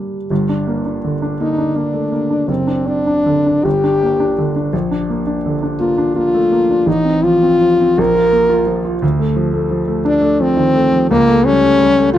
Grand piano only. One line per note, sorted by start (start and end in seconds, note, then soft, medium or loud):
0.00 0.26 G2 medium
0.00 0.32 D3 soft
0.00 0.30 G3 soft
0.00 0.32 A#3 soft
0.00 0.33 D4 soft
0.30 2.45 G1 medium
0.30 2.45 G2 medium
0.49 0.78 D4 medium
0.67 0.97 A#3 medium
0.86 1.15 D4 medium
1.04 1.33 D3 medium
1.22 1.51 D4 medium
1.40 1.69 A#3 medium
1.58 1.87 D4 medium
1.76 2.05 A#3 medium
1.94 2.12 A3 soft
2.12 2.41 A#3 medium
2.30 2.49 D4 soft
2.48 3.61 F#1 medium
2.67 2.98 D4 medium
2.87 3.18 C4 soft
3.07 3.38 D4 medium
3.26 3.57 D3 medium
3.46 3.65 D4 medium
3.65 4.70 G1 medium
3.84 4.13 D4 medium
4.03 4.31 A#3 medium
4.20 4.48 D4 medium
4.38 4.66 D3 medium
4.56 4.73 D4 medium
4.73 6.83 A#1 medium
4.91 5.20 D4 medium
5.10 5.38 A#3 medium
5.27 5.55 D4 medium
5.46 5.73 D3 medium
5.63 5.91 D4 medium
5.80 6.08 A#3 medium
5.98 6.26 D4 medium
6.16 6.44 A#3 medium
6.34 6.51 A3 medium
6.52 6.80 A#3 medium
6.70 6.87 D4 medium
6.86 7.95 A1 medium
7.05 7.35 C4 medium
7.23 7.54 F3 medium
7.43 7.73 C4 medium
7.61 7.91 F3 medium
7.81 7.99 C4 medium
7.98 8.99 A#1 medium
8.15 8.43 F4 medium
8.33 8.61 A#3 medium
8.49 8.78 F4 medium
8.67 8.95 F3 medium
8.85 9.02 F4 medium
9.02 11.05 D2 medium
9.19 9.47 A3 medium
9.36 9.64 F3 medium
9.54 9.82 A3 medium
9.71 9.99 F3 medium
9.88 10.16 A3 medium
10.05 10.33 D4 medium
10.21 10.50 A3 medium
10.40 10.68 F3 medium
10.57 10.74 D#3 medium
10.74 11.02 A3 medium
10.92 11.10 F3 medium
11.11 12.11 C#2 medium
11.29 11.56 A3 medium
11.46 11.73 G3 medium
11.63 11.90 A3 medium
11.81 12.07 G3 medium
11.98 12.15 A3 medium